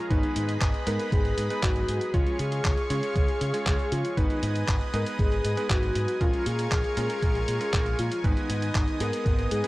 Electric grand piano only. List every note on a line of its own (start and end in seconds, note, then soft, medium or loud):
0.10 0.84 G#3 medium
0.10 0.84 B3 medium
0.10 0.84 D#4 medium
0.10 0.84 B4 medium
0.87 1.47 G#3 medium
0.87 1.47 B3 medium
0.87 1.47 D#4 medium
0.87 1.47 B4 loud
1.50 2.11 G#3 medium
1.50 2.11 B3 medium
1.50 2.11 D#4 medium
1.50 2.11 B4 medium
2.14 2.87 G#3 medium
2.14 2.87 C#4 medium
2.14 2.87 F4 medium
2.14 2.87 C#5 medium
2.90 3.51 G#3 medium
2.90 3.51 C#4 medium
2.90 3.51 F4 medium
2.90 3.51 C#5 medium
3.54 4.14 G#3 medium
3.54 4.14 C#4 medium
3.54 4.14 F4 medium
3.54 4.14 C#5 medium
4.17 4.91 G#3 medium
4.17 4.91 B3 medium
4.17 4.91 D#4 medium
4.17 4.90 B4 medium
4.94 5.54 G#3 medium
4.94 5.54 B3 medium
4.94 5.54 D#4 medium
4.94 5.54 B4 loud
5.57 6.18 G#3 medium
5.57 6.18 B3 medium
5.57 6.18 D#4 medium
5.57 6.18 B4 medium
6.21 6.94 G#3 medium
6.21 6.94 C#4 medium
6.21 6.94 F4 medium
6.21 6.94 A#4 medium
6.97 7.57 G#3 medium
6.97 7.57 C#4 medium
6.97 7.57 F4 medium
6.97 7.57 A#4 loud
7.60 8.21 G#3 medium
7.60 8.21 C#4 medium
7.60 8.21 F4 medium
7.60 8.21 A#4 medium
8.24 8.97 G#3 medium
8.24 8.97 B3 medium
8.24 8.97 D#4 medium
8.24 8.97 B4 medium
9.00 9.61 G#3 medium
9.00 9.61 B3 medium
9.00 9.61 D#4 medium
9.00 9.61 G#4 loud
9.64 9.68 G#3 medium
9.64 9.68 B3 medium
9.64 9.68 D#4 medium
9.64 9.68 B4 medium